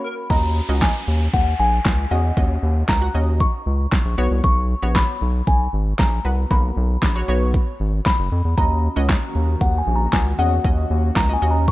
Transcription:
Already playing: analog synth pad A#3 C#4 F#4, synth bell B5
0.04 digital synth lead A#4
0.30 analog synth bass D#2, synth pluck C#4 F#4 D#5, synth bell A#5, kick, downlifter
0.69 analog synth bass C#2, synth pluck C#4 F#4 D#5
0.82 synth bell G#5, kick, snare, clap
1.08 analog synth bass D#2
1.34 analog synth bass D#2, synth bell F#5, kick
1.59 analog synth bass A#1, synth bell G#5
1.85 analog synth bass C#2, kick, snare, clap
2.11 analog synth bass E2, synth pluck C#4 F#4 D#5, synth bell F#5
2.37 analog synth bass D#2, synth pluck C#4 F#4 D#5, kick
2.63 analog synth bass D#2
2.89 analog synth bass C#2, synth bell A#5, kick, snare, clap
3.01 synth pluck F#4 F#5
3.14 analog synth bass D#2, synth pluck C#4 F#4 D#5
3.40 synth bell C#6, kick
3.66 analog synth bass C#2
3.92 kick, snare, clap
4.05 analog synth bass A#1
4.18 analog synth bass B1, synth pluck B3 F#4 C#5
4.31 analog synth bass C2
4.44 analog synth bass B1, synth bell C#6, kick
4.82 analog synth bass A#1, synth pluck B3 F#4 C#5
4.95 synth bell B5, kick, snare, clap
5.21 analog synth bass B1
5.47 analog synth bass B1, synth bell G#5, kick
5.73 analog synth bass G#1
5.99 analog synth bass A#1, synth bell A#5, kick, snare, clap
6.25 analog synth bass C2, synth pluck B3 F#4 B4
6.51 analog synth bass B1, synth pluck A#3 B3 F#4, synth bell B5, kick
6.77 analog synth bass B1
7.02 analog synth bass A#1, kick, snare, clap
7.15 synth pluck F#4 C#5
7.28 analog synth bass B1, synth pluck B3 F#4 C#5
7.54 kick
7.80 analog synth bass G#1
8.06 synth bell B5, kick, snare, clap
8.19 analog synth bass F#1
8.32 analog synth bass F2
8.45 analog synth bass E2
8.57 analog synth bass D#2, analog synth pad D#3 A#3 C#4 F#4, synth pluck C#4 F#4 D#5, synth bell A#5, kick
8.96 analog synth bass C#2, synth pluck C#4 F#4 D#5
9.09 kick, snare, clap
9.35 analog synth bass D#2
9.61 analog synth bass D#2, synth bell F#5, kick
9.78 synth bell G#5
9.87 analog synth bass A#1
9.96 synth bell A#5
10.13 analog synth bass C#2, synth bell G#5, kick, snare, clap
10.39 analog synth bass E2, synth pluck C#4 F#4 D#5, synth bell F#5
10.64 analog synth bass D#2, synth pluck C#4 F#4 D#5, kick
10.90 analog synth bass D#2
11.16 analog synth bass C#2, synth bell A#5, kick, snare, clap
11.29 synth pluck F#4 D#5
11.33 synth bell G#5
11.42 analog synth bass D#2, synth pluck C#4 F#4 D#5
11.51 synth bell A#5
11.68 synth bell C#6, kick

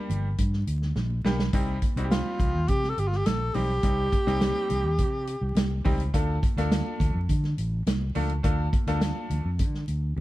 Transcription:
Already playing: upright piano G3 A#3 D4 G4
0.09 fingered electric bass G1, closed hi-hat, low conga
0.38 fingered electric bass G2, kick, closed hi-hat, muted conga, low conga
0.53 snare
0.67 fingered electric bass D2, closed hi-hat
0.82 snare
0.96 fingered electric bass A#1, snare, high conga
1.10 muted conga
1.24 fingered electric bass B1, upright piano G3 A#3 D4 G4, snare, low conga
1.39 snare
1.53 fingered electric bass C2, upright piano G3 C4 D#4 G4, kick, closed hi-hat
1.68 muted conga
1.82 kick, closed hi-hat, high conga
1.96 fingered electric bass C2, upright piano G3 C4 D#4 F#4, closed hi-hat
2.04 upright piano G4
2.11 tenor saxophone F4, snare, closed hi-hat, high conga
2.26 muted conga, high conga
2.40 fingered electric bass C2, kick, closed hi-hat, low conga
2.54 fingered electric bass D#2
2.68 fingered electric bass C3, tenor saxophone G4, kick, closed hi-hat, muted conga, low conga
2.84 snare, muted conga
2.89 tenor saxophone A4
2.97 fingered electric bass G1, tenor saxophone G4, closed hi-hat
3.08 tenor saxophone F4
3.12 snare
3.17 tenor saxophone G4
3.26 fingered electric bass A#1, tenor saxophone A4, snare, closed hi-hat, muted conga, high conga
3.54 fingered electric bass B1, upright piano G3 C4 D#4 G4, tenor saxophone G4, open hi-hat, low conga
3.83 fingered electric bass C2, upright piano G3 C4 D#4 G4, kick, closed hi-hat, muted conga
4.12 kick, closed hi-hat, high conga
4.27 fingered electric bass C2, upright piano G3 C4 D#4 G4, snare, closed hi-hat
4.41 snare, closed hi-hat, muted conga, high conga
4.55 muted conga, high conga
4.69 fingered electric bass C2, closed hi-hat, low conga
4.84 fingered electric bass D#2
4.98 fingered electric bass C3, kick, closed hi-hat, muted conga, low conga
5.27 closed hi-hat
5.41 fingered electric bass C2
5.55 fingered electric bass C2, snare, closed hi-hat, high conga
5.84 fingered electric bass C#2, upright piano G3 C4 D#4 G4, kick, open hi-hat, low conga
6.00 closed hi-hat
6.13 fingered electric bass D2, upright piano A3 D4 F4 A4, kick, closed hi-hat
6.42 kick, closed hi-hat, high conga
6.57 fingered electric bass D2, upright piano A3 D4 F4 A4, snare, closed hi-hat
6.71 snare, closed hi-hat, high conga
6.86 muted conga, high conga
7.00 fingered electric bass D2, kick, closed hi-hat, low conga
7.14 fingered electric bass F2
7.29 fingered electric bass D3, kick, closed hi-hat, muted conga, low conga
7.44 snare, muted conga
7.57 fingered electric bass A1, closed hi-hat
7.87 fingered electric bass C2, snare, closed hi-hat, muted conga, high conga
8.01 muted conga
8.15 fingered electric bass C#2, upright piano A3 D4 F4 A4, open hi-hat, low conga
8.29 closed hi-hat
8.43 fingered electric bass D2, upright piano A3 D4 F4 A4, kick, closed hi-hat, muted conga
8.73 kick, closed hi-hat, high conga
8.87 fingered electric bass D2, upright piano A3 D4 F4 A4, snare, closed hi-hat
9.01 snare, closed hi-hat, muted conga, high conga
9.17 high conga
9.30 fingered electric bass D2, closed hi-hat, low conga
9.45 fingered electric bass F2
9.59 fingered electric bass D3, kick, closed hi-hat, low conga
9.74 snare
9.88 fingered electric bass D2, closed hi-hat
10.16 fingered electric bass D2, muted conga, high conga

